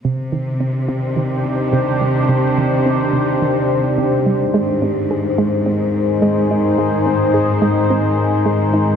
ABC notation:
X:1
M:4/4
L:1/8
Q:1/4=107
K:Cm
V:1 name="Ambient pad"
[E,DGc]8- | [E,DGc]8 | [E,EAc]8- | [E,EAc]8 |]
V:2 name="Synth pluck" clef=bass
C, E, C C, E, z C, G, | C, E, C C, E, z C, G, | A, C A A, C z A, E | A, C A A, C z A, E |]
V:3 name="Cello section" clef=bass
C,8- | C,8 | A,,8- | A,,8 |]